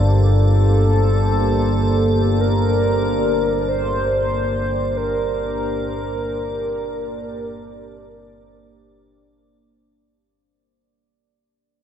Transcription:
0, 0, Header, 1, 5, 480
1, 0, Start_track
1, 0, Key_signature, -2, "minor"
1, 0, Tempo, 500000
1, 11359, End_track
2, 0, Start_track
2, 0, Title_t, "Ambient pad"
2, 0, Program_c, 0, 92
2, 0, Note_on_c, 0, 74, 76
2, 9848, Note_off_c, 0, 74, 0
2, 11359, End_track
3, 0, Start_track
3, 0, Title_t, "Soft synth lead"
3, 0, Program_c, 1, 80
3, 0, Note_on_c, 1, 69, 108
3, 2310, Note_on_c, 1, 70, 102
3, 2324, Note_off_c, 1, 69, 0
3, 3531, Note_off_c, 1, 70, 0
3, 3537, Note_on_c, 1, 72, 118
3, 4770, Note_on_c, 1, 70, 111
3, 4784, Note_off_c, 1, 72, 0
3, 8540, Note_off_c, 1, 70, 0
3, 11359, End_track
4, 0, Start_track
4, 0, Title_t, "Ambient pad"
4, 0, Program_c, 2, 92
4, 0, Note_on_c, 2, 58, 81
4, 0, Note_on_c, 2, 62, 90
4, 0, Note_on_c, 2, 67, 76
4, 0, Note_on_c, 2, 72, 66
4, 9823, Note_off_c, 2, 72, 0
4, 9827, Note_off_c, 2, 62, 0
4, 9828, Note_off_c, 2, 67, 0
4, 9834, Note_off_c, 2, 58, 0
4, 11359, End_track
5, 0, Start_track
5, 0, Title_t, "Synth drone"
5, 0, Program_c, 3, 95
5, 0, Note_on_c, 3, 31, 63
5, 0, Note_on_c, 3, 43, 61
5, 9949, Note_off_c, 3, 43, 0
5, 9951, Note_off_c, 3, 31, 0
5, 11359, End_track
0, 0, End_of_file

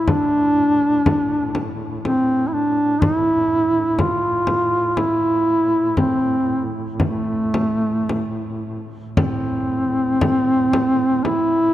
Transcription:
0, 0, Header, 1, 4, 480
1, 0, Start_track
1, 0, Key_signature, 0, "minor"
1, 0, Tempo, 981997
1, 39, Time_signature, 3, 2, 24, 8
1, 2919, Tempo, 1029160
1, 3399, Tempo, 1088929
1, 4359, Tempo, 1025641
1, 5557, End_track
2, 0, Start_track
2, 0, Title_t, "Duduk"
2, 0, Program_c, 0, 69
2, 9, Note_on_c, 0, 64, 59
2, 44, Note_on_c, 0, 62, 101
2, 52, Note_off_c, 0, 64, 0
2, 877, Note_off_c, 0, 62, 0
2, 1001, Note_on_c, 0, 60, 82
2, 1210, Note_on_c, 0, 64, 59
2, 1217, Note_off_c, 0, 60, 0
2, 1238, Note_on_c, 0, 62, 81
2, 1246, Note_off_c, 0, 64, 0
2, 1472, Note_on_c, 0, 64, 98
2, 1479, Note_off_c, 0, 62, 0
2, 1956, Note_on_c, 0, 65, 81
2, 1963, Note_off_c, 0, 64, 0
2, 2433, Note_on_c, 0, 64, 89
2, 2440, Note_off_c, 0, 65, 0
2, 2919, Note_off_c, 0, 64, 0
2, 2923, Note_on_c, 0, 60, 78
2, 3254, Note_off_c, 0, 60, 0
2, 3402, Note_on_c, 0, 57, 56
2, 4110, Note_off_c, 0, 57, 0
2, 4357, Note_on_c, 0, 60, 86
2, 5324, Note_on_c, 0, 64, 102
2, 5331, Note_off_c, 0, 60, 0
2, 5557, Note_off_c, 0, 64, 0
2, 5557, End_track
3, 0, Start_track
3, 0, Title_t, "Duduk"
3, 0, Program_c, 1, 69
3, 0, Note_on_c, 1, 45, 40
3, 4278, Note_off_c, 1, 45, 0
3, 4353, Note_on_c, 1, 45, 45
3, 5557, Note_off_c, 1, 45, 0
3, 5557, End_track
4, 0, Start_track
4, 0, Title_t, "Frame drum"
4, 37, Note_on_c, 9, 64, 57
4, 86, Note_off_c, 9, 64, 0
4, 518, Note_on_c, 9, 64, 62
4, 567, Note_off_c, 9, 64, 0
4, 757, Note_on_c, 9, 64, 51
4, 806, Note_off_c, 9, 64, 0
4, 1003, Note_on_c, 9, 64, 48
4, 1052, Note_off_c, 9, 64, 0
4, 1476, Note_on_c, 9, 64, 62
4, 1525, Note_off_c, 9, 64, 0
4, 1948, Note_on_c, 9, 64, 62
4, 1997, Note_off_c, 9, 64, 0
4, 2185, Note_on_c, 9, 64, 53
4, 2234, Note_off_c, 9, 64, 0
4, 2430, Note_on_c, 9, 64, 53
4, 2479, Note_off_c, 9, 64, 0
4, 2918, Note_on_c, 9, 64, 56
4, 2965, Note_off_c, 9, 64, 0
4, 3397, Note_on_c, 9, 64, 57
4, 3441, Note_off_c, 9, 64, 0
4, 3637, Note_on_c, 9, 64, 53
4, 3681, Note_off_c, 9, 64, 0
4, 3881, Note_on_c, 9, 64, 49
4, 3925, Note_off_c, 9, 64, 0
4, 4356, Note_on_c, 9, 64, 73
4, 4402, Note_off_c, 9, 64, 0
4, 4843, Note_on_c, 9, 64, 69
4, 4890, Note_off_c, 9, 64, 0
4, 5087, Note_on_c, 9, 64, 57
4, 5134, Note_off_c, 9, 64, 0
4, 5328, Note_on_c, 9, 64, 54
4, 5375, Note_off_c, 9, 64, 0
4, 5557, End_track
0, 0, End_of_file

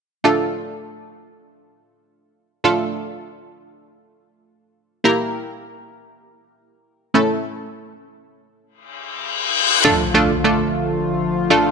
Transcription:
0, 0, Header, 1, 5, 480
1, 0, Start_track
1, 0, Key_signature, -1, "minor"
1, 0, Tempo, 600000
1, 197, Time_signature, 4, 2, 24, 8
1, 9370, End_track
2, 0, Start_track
2, 0, Title_t, "Synth stab"
2, 0, Program_c, 0, 62
2, 192, Note_on_c, 0, 57, 75
2, 195, Note_on_c, 0, 62, 68
2, 198, Note_on_c, 0, 65, 68
2, 201, Note_on_c, 0, 69, 80
2, 2083, Note_off_c, 0, 57, 0
2, 2084, Note_off_c, 0, 62, 0
2, 2085, Note_off_c, 0, 65, 0
2, 2087, Note_off_c, 0, 69, 0
2, 2112, Note_on_c, 0, 57, 73
2, 2115, Note_on_c, 0, 62, 70
2, 2118, Note_on_c, 0, 65, 72
2, 2120, Note_on_c, 0, 69, 80
2, 4002, Note_off_c, 0, 57, 0
2, 4004, Note_off_c, 0, 62, 0
2, 4005, Note_off_c, 0, 65, 0
2, 4006, Note_off_c, 0, 69, 0
2, 4033, Note_on_c, 0, 58, 74
2, 4036, Note_on_c, 0, 64, 71
2, 4038, Note_on_c, 0, 67, 69
2, 4041, Note_on_c, 0, 70, 85
2, 5683, Note_off_c, 0, 58, 0
2, 5684, Note_off_c, 0, 64, 0
2, 5685, Note_off_c, 0, 67, 0
2, 5687, Note_off_c, 0, 70, 0
2, 5713, Note_on_c, 0, 57, 75
2, 5716, Note_on_c, 0, 61, 69
2, 5718, Note_on_c, 0, 64, 68
2, 5721, Note_on_c, 0, 69, 84
2, 7603, Note_off_c, 0, 57, 0
2, 7604, Note_off_c, 0, 61, 0
2, 7606, Note_off_c, 0, 64, 0
2, 7607, Note_off_c, 0, 69, 0
2, 7875, Note_on_c, 0, 57, 93
2, 7877, Note_on_c, 0, 62, 81
2, 7878, Note_on_c, 0, 65, 83
2, 7879, Note_on_c, 0, 69, 100
2, 8013, Note_off_c, 0, 57, 0
2, 8014, Note_off_c, 0, 62, 0
2, 8014, Note_off_c, 0, 65, 0
2, 8015, Note_off_c, 0, 69, 0
2, 8115, Note_on_c, 0, 57, 91
2, 8116, Note_on_c, 0, 62, 85
2, 8118, Note_on_c, 0, 65, 86
2, 8119, Note_on_c, 0, 69, 100
2, 8253, Note_off_c, 0, 57, 0
2, 8253, Note_off_c, 0, 62, 0
2, 8254, Note_off_c, 0, 65, 0
2, 8255, Note_off_c, 0, 69, 0
2, 8355, Note_on_c, 0, 57, 83
2, 8356, Note_on_c, 0, 62, 74
2, 8358, Note_on_c, 0, 65, 78
2, 8359, Note_on_c, 0, 69, 91
2, 8813, Note_off_c, 0, 57, 0
2, 8814, Note_off_c, 0, 62, 0
2, 8814, Note_off_c, 0, 65, 0
2, 8815, Note_off_c, 0, 69, 0
2, 9202, Note_on_c, 0, 57, 96
2, 9203, Note_on_c, 0, 62, 86
2, 9205, Note_on_c, 0, 65, 86
2, 9206, Note_on_c, 0, 69, 102
2, 9370, Note_off_c, 0, 57, 0
2, 9370, Note_off_c, 0, 62, 0
2, 9370, Note_off_c, 0, 65, 0
2, 9370, Note_off_c, 0, 69, 0
2, 9370, End_track
3, 0, Start_track
3, 0, Title_t, "Analog synth pad"
3, 0, Program_c, 1, 89
3, 7878, Note_on_c, 1, 50, 80
3, 7878, Note_on_c, 1, 53, 71
3, 7878, Note_on_c, 1, 57, 71
3, 7879, Note_on_c, 1, 65, 85
3, 9370, Note_off_c, 1, 50, 0
3, 9370, Note_off_c, 1, 53, 0
3, 9370, Note_off_c, 1, 57, 0
3, 9370, Note_off_c, 1, 65, 0
3, 9370, End_track
4, 0, Start_track
4, 0, Title_t, "Impact"
4, 0, Program_c, 2, 103
4, 7877, Note_on_c, 2, 60, 81
4, 9370, Note_off_c, 2, 60, 0
4, 9370, End_track
5, 0, Start_track
5, 0, Title_t, "Reverse cymbal"
5, 0, Program_c, 3, 119
5, 6917, Note_on_c, 3, 60, 74
5, 7877, Note_off_c, 3, 60, 0
5, 9370, End_track
0, 0, End_of_file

